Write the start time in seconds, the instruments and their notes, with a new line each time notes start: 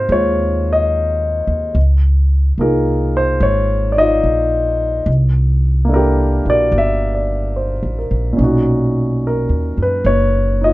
Already playing: grand piano C3 A#3 D#4 F#4 A#4 C5
0.09 upright bass D#2, grand piano G#3 F4 C#5
0.73 grand piano D#5
1.47 upright bass D#2
1.75 upright bass C#2
2.58 upright bass C2, grand piano A#3 D#4 F4 G#4 A#4
3.17 grand piano C5
3.40 upright bass G#1, grand piano C#5
3.92 grand piano D5
3.97 grand piano D#4 F4 D#5
4.23 upright bass A#1
5.06 upright bass C2
5.85 grand piano A#3 D4
5.90 grand piano E4 A4
5.94 grand piano G4 A#4
6.45 upright bass A#1, grand piano E4 F#4 A#4
6.50 grand piano D5
6.72 upright bass G1
6.78 grand piano E5
7.15 grand piano D5
7.56 grand piano C5
7.83 upright bass A1
7.99 grand piano A#4
8.11 upright bass A#1
8.33 grand piano A#2 C#4
8.39 upright bass B1, grand piano D#4
8.44 grand piano F#4
9.27 grand piano A#4
9.49 upright bass D#2
9.77 upright bass F#2
9.82 grand piano B4
10.04 upright bass F#1, grand piano C#5
10.61 grand piano D#4 F4 D#5